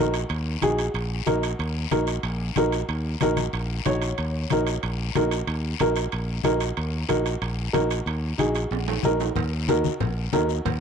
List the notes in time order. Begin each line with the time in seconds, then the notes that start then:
Already playing: A#1 D#4 F#4
0.00 A#4
0.14 high timbale, short guiro
0.29 D#2, high timbale, long guiro
0.61 A#1 D#4 F#4 G#4, high conga, high timbale, short guiro
0.78 high timbale, short guiro
0.94 A#1, high timbale, long guiro
1.26 A#1 D#4 F#4 A#4, high conga, high timbale, short guiro
1.43 high timbale, short guiro
1.59 D#2, high timbale, long guiro
1.91 A#1 D#4 F#4 A#4, high conga, high timbale, short guiro
2.07 high timbale, short guiro
2.23 A#1, high timbale, long guiro
2.56 A#1 D#4 F#4 A#4, high conga, high timbale, low timbale, short guiro
2.72 high timbale, short guiro
2.89 D#2, high timbale, long guiro
3.21 A#1 D#4 F#4 A#4, high conga, high timbale, short guiro
3.37 high conga, high timbale, short guiro
3.53 A#1, high timbale, long guiro
3.85 A#1 D#4 F#4 C#5, high conga, high timbale, low timbale, short guiro
4.02 high timbale, short guiro
4.18 D#2, high timbale, long guiro
4.50 A#1 D#4 F#4 A#4, high conga, high timbale, short guiro
4.67 high timbale, short guiro
4.83 A#1, high timbale, long guiro
5.15 A#1 D#4 F#4 A#4, high conga, high timbale, low timbale, short guiro
5.31 high timbale, short guiro
5.47 D#2, high timbale, long guiro
5.80 A#1 D#4 F#4 A#4, high conga, high timbale, short guiro
5.96 high timbale, short guiro
6.12 A#1, high timbale, long guiro
6.44 A#1 D#4 F#4 A#4, high conga, high timbale, low timbale, short guiro
6.60 high timbale, short guiro
6.77 D#2, high timbale, long guiro
7.09 A#1 D#4 F#4 A#4, high conga, high timbale, short guiro
7.26 high timbale, short guiro
7.42 A#1, high timbale, long guiro
7.73 A#1 D#4 F#4 A#4, high conga, high timbale, low timbale, short guiro
7.90 high timbale, short guiro
8.06 D#2, high timbale, long guiro
8.38 A#1 D#4 F#4 G#4, high conga, high timbale, short guiro
8.55 high timbale, short guiro
8.71 A#1, high timbale, long guiro
8.88 low timbale
9.03 A#1 D#4 F#4 A#4, high conga, low timbale, short guiro
9.20 low timbale, short guiro
9.35 D#2, cowbell, low conga, long guiro
9.68 D#4 F#4 A#4, cowbell, high conga, short guiro
9.84 high conga, short guiro
10.00 A#1, cowbell, low conga, long guiro
10.33 D#2 D#4 F#4 A#4, cowbell, high conga, low timbale, short guiro
10.49 short guiro
10.65 D#2, cowbell, low conga, long guiro